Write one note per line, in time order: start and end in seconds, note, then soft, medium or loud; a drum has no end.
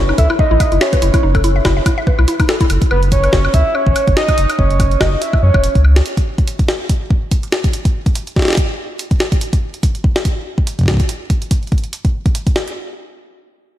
0.00 0.12 F#1 medium
0.00 0.15 C#5 loud
0.09 0.15 D#4 medium
0.09 high woodblock medium
0.18 0.26 C#2 medium
0.18 0.25 A4 loud
0.18 0.28 E5 loud
0.18 kick loud
0.18 closed hi-hat medium
0.30 0.33 E4 loud
0.30 high woodblock medium
0.39 0.83 D#5 loud
0.39 0.50 E5 medium
0.39 kick loud
0.51 0.57 A1 medium
0.51 0.57 E4 loud
0.60 0.67 E5 medium
0.60 kick loud
0.60 closed hi-hat medium
0.60 high woodblock medium
0.72 0.78 F#1 medium
0.72 0.75 E4 medium
0.72 closed hi-hat soft
0.81 1.65 C#5 loud
0.81 0.85 E5 loud
0.81 snare loud
0.81 high woodblock medium
0.93 0.98 B4 medium
0.93 kick loud
0.93 closed hi-hat medium
1.02 1.10 F#1 loud
1.02 1.09 E4 medium
1.02 closed hi-hat medium
1.14 1.22 E4 medium
1.14 kick loud
1.14 closed hi-hat medium
1.14 high woodblock medium
1.23 1.60 F#1 medium
1.23 1.30 D#4 medium
1.35 1.40 A4 loud
1.35 kick loud
1.35 closed hi-hat soft
1.35 high woodblock medium
1.44 1.48 E4 loud
1.44 closed hi-hat medium
1.56 1.64 E5 medium
1.65 1.80 F#1 medium
1.65 1.72 E4 loud
1.65 kick loud
1.65 snare loud
1.65 high woodblock soft
1.77 1.82 E5 medium
1.86 1.90 E4 medium
1.86 kick loud
1.86 closed hi-hat medium
1.86 high woodblock medium
1.98 2.01 E5 loud
2.07 2.14 B4 medium
2.07 kick loud
2.19 2.25 B1 medium
2.19 2.24 E4 medium
2.19 high woodblock medium
2.28 2.39 E4 medium
2.28 closed hi-hat medium
2.40 2.45 D#4 medium
2.40 kick loud
2.40 closed hi-hat soft
2.40 high woodblock medium
2.49 2.56 A4 loud
2.49 snare loud
2.61 2.64 E4 loud
2.61 kick loud
2.61 closed hi-hat medium
2.70 2.78 F#1 loud
2.70 closed hi-hat medium
2.70 high woodblock soft
2.82 kick loud
2.82 closed hi-hat medium
2.91 3.28 F#1 medium
2.91 3.00 B4 medium
2.91 high woodblock medium
3.03 closed hi-hat soft
3.12 3.55 C#5 loud
3.12 kick loud
3.12 closed hi-hat medium
3.24 closed hi-hat soft
3.24 high woodblock soft
3.33 3.48 F#1 medium
3.33 kick loud
3.33 snare loud
3.45 high woodblock medium
3.54 3.62 C#2 medium
3.54 3.76 E5 loud
3.54 kick loud
3.54 closed hi-hat medium
3.75 4.16 C#5 loud
3.75 high woodblock soft
3.86 3.93 A1 loud
3.86 kick loud
3.96 closed hi-hat medium
3.96 high woodblock medium
4.07 4.14 F#1 medium
4.07 kick loud
4.07 closed hi-hat soft
4.17 4.56 D#5 loud
4.17 snare loud
4.28 kick loud
4.28 closed hi-hat soft
4.28 high woodblock soft
4.38 4.46 F#1 loud
4.38 closed hi-hat medium
4.50 closed hi-hat medium
4.50 high woodblock medium
4.59 4.96 F#1 medium
4.59 5.02 C#5 loud
4.59 kick loud
4.71 closed hi-hat soft
4.80 kick loud
4.80 closed hi-hat medium
4.80 high woodblock soft
4.91 closed hi-hat soft
5.01 5.16 F#1 medium
5.01 5.23 D#5 loud
5.01 kick loud
5.01 snare loud
5.01 high woodblock medium
5.22 5.42 E5 loud
5.22 closed hi-hat medium
5.33 kick loud
5.33 high woodblock soft
5.43 5.51 F#2 loud
5.43 5.82 C#5 medium
5.54 5.68 E1 loud
5.54 kick loud
5.54 high woodblock medium
5.64 closed hi-hat medium
5.75 6.01 C#2 loud
5.75 kick loud
5.75 closed hi-hat soft
5.85 high woodblock soft
5.96 snare loud
5.96 closed hi-hat soft
6.06 closed hi-hat medium
6.17 kick loud
6.17 closed hi-hat soft
6.38 kick loud
6.38 closed hi-hat soft
6.48 closed hi-hat medium
6.59 kick loud
6.59 closed hi-hat soft
6.68 snare loud
6.89 kick loud
6.89 closed hi-hat medium
7.10 kick loud
7.31 kick loud
7.31 closed hi-hat medium
7.43 closed hi-hat soft
7.52 snare loud
7.64 kick loud
7.64 closed hi-hat soft
7.73 closed hi-hat medium
7.85 kick loud
7.85 closed hi-hat soft
8.06 kick loud
8.06 closed hi-hat soft
8.15 closed hi-hat medium
8.27 closed hi-hat soft
8.36 kick loud
8.36 snare soft
8.39 snare medium
8.42 snare medium
8.45 snare medium
8.48 snare medium
8.50 snare medium
8.53 snare medium
8.55 kick loud
8.55 snare loud
8.55 closed hi-hat medium
8.99 closed hi-hat medium
9.11 kick loud
9.11 closed hi-hat soft
9.20 snare loud
9.32 kick loud
9.32 closed hi-hat soft
9.41 closed hi-hat medium
9.53 kick medium
9.53 closed hi-hat soft
9.74 closed hi-hat soft
9.83 kick loud
9.83 closed hi-hat medium
9.95 closed hi-hat soft
10.04 kick loud
10.16 snare loud
10.25 kick medium
10.25 closed hi-hat medium
10.58 kick medium
10.67 closed hi-hat medium
10.79 kick soft
10.79 closed hi-hat soft
10.81 kick medium
10.83 kick medium
10.86 kick medium
10.86 snare loud
10.88 kick medium
10.91 kick medium
10.94 kick medium
10.97 kick loud
10.97 closed hi-hat soft
11.00 kick medium
11.09 closed hi-hat medium
11.30 kick loud
11.30 closed hi-hat medium
11.42 closed hi-hat soft
11.51 kick loud
11.51 closed hi-hat medium
11.63 closed hi-hat soft
11.67 closed hi-hat soft
11.72 kick loud
11.72 closed hi-hat soft
11.78 closed hi-hat soft
11.84 closed hi-hat soft
11.93 closed hi-hat medium
12.05 kick loud
12.05 closed hi-hat soft
12.26 kick loud
12.26 closed hi-hat soft
12.35 closed hi-hat medium
12.47 kick loud
12.47 closed hi-hat soft
12.56 snare loud
12.68 closed hi-hat soft